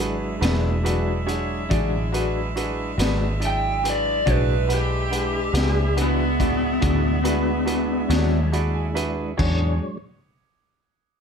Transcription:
Already playing: fingered electric bass G#1, tonewheel organ F#3 G#3 D4 E4, horn section G#3 D4 E4 E5, grand piano D4 G#4
0.00 grand piano F#4 B4
0.39 fingered electric bass E1, grand piano D4 F#4 G#4 B4, closed hi-hat
0.43 clean electric guitar G#3 D4 F#4, snare
0.83 clean electric guitar E3 G#3 D4 F#4, grand piano D4 F#4 G#4 B4, closed hi-hat
1.26 grand piano D4 F#4 G#4 C#5, closed hi-hat
1.69 fingered electric bass A1, clean electric guitar E3 G#3 D4 F#4, grand piano D4 F#4 G#4 D5, kick, closed hi-hat
2.12 clean electric guitar G#3 D4 F#4, grand piano D4 F#4 G#4 B4, closed hi-hat
2.56 grand piano D4 F#4 G#4 B4, closed hi-hat
2.98 fingered electric bass G#1, clean electric guitar G#3 D4 F#4, grand piano D4 F#4 G#4 B4, closed hi-hat
3.02 snare
3.40 grand piano D4 E4 G#4 D5, closed hi-hat
3.47 lead electric guitar G5
3.83 grand piano D4 F#4 G#4 B4, closed hi-hat
3.90 lead electric guitar D5
4.25 fingered electric bass B1, clean electric guitar E3 G#3 D4 F#4, tonewheel organ G#3 D4 E4, grand piano D4 F#4 G#4 D5, horn section E4 E5, kick, closed hi-hat
4.31 lead electric guitar B4
4.67 grand piano G#3 D4 B4 F#5, closed hi-hat
4.74 lead electric guitar G4
5.10 grand piano G#3 D4 B4 F#5, closed hi-hat
5.52 fingered electric bass C#2, grand piano G#3 D4 B4 F#5, clean electric guitar G#3 D4 F#4, closed hi-hat
5.57 snare
5.96 clean electric guitar E3 G#3 D4 F#4, grand piano D4 F#4 G#4 B4, closed hi-hat
6.02 lead electric guitar B3
6.39 grand piano D4 F#4 G#4 D5, kick, closed hi-hat
6.81 fingered electric bass D2, clean electric guitar E3 G#3 D4 F#4, grand piano D4 F#4 G#4 D5, kick, closed hi-hat
7.23 clean electric guitar G#3 D4 F#4, grand piano D4 F#4 G#4 B4, closed hi-hat
7.65 grand piano D4 F#4 G#4 B4, closed hi-hat
8.09 fingered electric bass D#2, clean electric guitar G#3 D4 F#4, grand piano D4 F#4 G#4 C#5, snare, closed hi-hat
8.52 grand piano D4 F#4 G#4 D5 B5, closed hi-hat
8.74 grand piano G#5
8.94 grand piano D4 F#4 G#4 B4 E5, closed hi-hat
9.37 fingered electric bass E2, clean electric guitar E3 D4 G#4 C#5, tonewheel organ F#3 G#3 D4 C#5, horn section C#4 D4 F#4 G#4 C#5, grand piano D4 F#4 G#4 C#5, kick, crash

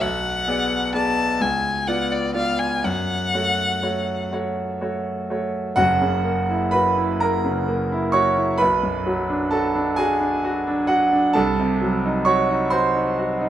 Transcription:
0.00 grand piano B1, violin F#5
0.47 grand piano B3 G#4 D5
0.94 grand piano B3 G#4 D5, violin A5
1.40 grand piano C#2, violin G#5
1.87 grand piano B3 F4 D5, violin F#5
2.12 violin D5
2.34 grand piano B3 F4 D5, violin F5
2.59 violin G#5
2.84 grand piano F#2, violin F#5
3.34 grand piano A3 F#4 C#5
3.82 grand piano A3 F#4 C#5
4.32 grand piano A3 F#4 C#5
4.81 grand piano A3 F#4 C#5
5.30 grand piano A3 F#4 C#5
5.76 grand piano F#1 F#2 F#4 F#5
6.01 grand piano C#3
6.25 grand piano A#3
6.49 grand piano E4
6.71 grand piano F#4 B4 B5
6.97 grand piano E4
7.20 grand piano A#3 A#4 A#5
7.44 grand piano C#3
7.68 grand piano A#3
7.92 grand piano E4
8.12 grand piano F#4 C#5 C#6
8.37 grand piano E4
8.58 grand piano B1 B4 B5
8.82 grand piano F#2
9.06 grand piano F#3
9.29 grand piano D4
9.51 grand piano F#4 A4 A5
9.75 grand piano D4
9.96 grand piano F#4 G#4 G#5
10.20 grand piano D4
10.44 grand piano F#4
10.67 grand piano D4
10.87 grand piano F#4 F#5
11.12 grand piano D4
11.33 grand piano C2 A4 A5
11.59 grand piano C3
11.81 grand piano F#3
12.05 grand piano D#4
12.25 grand piano F#4 C#5 C#6
12.50 grand piano D#4
12.70 grand piano F#4 C5 C6
12.95 grand piano D#4
13.18 grand piano F#4
13.41 grand piano D#4

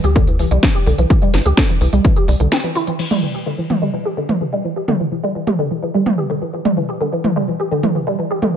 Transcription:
0.04 analog synth bass D2, synth pluck G4, closed hi-hat
0.16 synth pluck D3, kick, closed hi-hat
0.28 synth pluck E3, closed hi-hat
0.39 analog synth bass C2, synth pluck E3, open hi-hat
0.51 analog synth bass C2, synth pluck G3, closed hi-hat
0.63 synth pluck E3, kick, snare, closed hi-hat
0.75 synth pluck G4, closed hi-hat
0.86 analog synth bass C2, synth pluck D3, open hi-hat
0.98 analog synth bass C2, synth pluck E3, closed hi-hat
1.10 synth pluck E3, kick, closed hi-hat
1.22 synth pluck G3, closed hi-hat
1.34 analog synth bass G1, synth pluck E3, snare, open hi-hat
1.46 analog synth bass D2, synth pluck G4, closed hi-hat
1.57 synth pluck D3, kick, snare, closed hi-hat
1.69 synth pluck E3, closed hi-hat
1.81 analog synth bass C2, synth pluck E3, open hi-hat
1.93 analog synth bass C2, synth pluck G3, closed hi-hat
2.05 synth pluck E3, kick, closed hi-hat
2.16 synth pluck G4, closed hi-hat
2.28 analog synth bass C2, synth pluck G3, open hi-hat
2.40 analog synth bass C2, synth pluck D3, closed hi-hat
2.52 synth pluck C4, snare, closed hi-hat
2.64 synth pluck E3, closed hi-hat
2.75 synth pluck E4, open hi-hat
2.87 synth pluck E3, closed hi-hat
2.99 synth pluck E3, crash
3.11 synth pluck G3, mid tom
3.23 synth pluck E3
3.35 synth pluck G4
3.46 synth pluck D3
3.58 synth pluck E3
3.70 synth pluck E3, mid tom
3.82 synth pluck G3
3.94 synth pluck E3
4.05 synth pluck G4
4.17 synth pluck D3
4.29 synth pluck E3, mid tom
4.41 synth pluck E3
4.53 synth pluck G3
4.64 synth pluck E3
4.76 synth pluck G4
4.88 synth pluck D3, mid tom
5.00 synth pluck E3
5.12 synth pluck E3
5.24 synth pluck G3
5.35 synth pluck E3
5.47 synth pluck G4, mid tom
5.59 synth pluck D3
5.71 synth pluck E3
5.82 synth pluck E3
5.94 synth pluck G3
6.06 synth pluck E3, mid tom
6.18 synth pluck G4
6.30 synth pluck D3
6.42 synth pluck E3
6.53 synth pluck E3
6.65 synth pluck G3, mid tom
6.77 synth pluck E3
6.89 synth pluck G4
7.01 synth pluck D3
7.12 synth pluck E3
7.24 synth pluck E3, mid tom
7.36 synth pluck G3
7.48 synth pluck E3
7.60 synth pluck G4
7.71 synth pluck D3
7.83 synth pluck E3, mid tom
7.95 synth pluck E3
8.07 synth pluck G3
8.19 synth pluck E3
8.31 synth pluck G4
8.42 synth pluck D3, mid tom

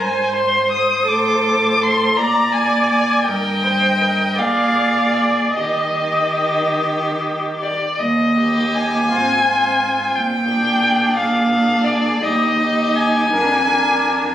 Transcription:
Already playing: cello G#2, violin C5
0.00 viola C5, violin G#5
0.36 violin C6
0.71 violin D#6
1.07 cello A2, viola A4, violin D6
1.83 violin C6
2.16 cello A#2, viola D5, violin D5 A#5
2.52 violin G#5
2.89 violin G#5
3.24 cello G2, viola A#4, violin D#5 G5
3.64 viola C5
4.01 viola A#4
4.38 cello A#2, violin G#4 F5, viola D5
5.15 violin D5
5.56 cello D#3, violin G4 D#5, viola D#5
7.60 violin D5
7.98 cello D#2, violin D#5
8.39 viola A#3, violin G4
8.74 violin G#5
9.10 cello G#2, viola C4, violin F4
9.46 viola C4, violin F4
10.15 cello A#2, violin G5
10.49 viola D4, violin G#4
11.18 cello A#2, violin F5
11.52 viola D4, violin G#4
11.85 violin D5
12.21 cello D#2, viola D#4, violin G4 D#5
12.59 viola D#4, violin G4
12.96 violin G#5
13.31 cello F2, viola D4, violin A#4
13.65 viola D4, violin A#4

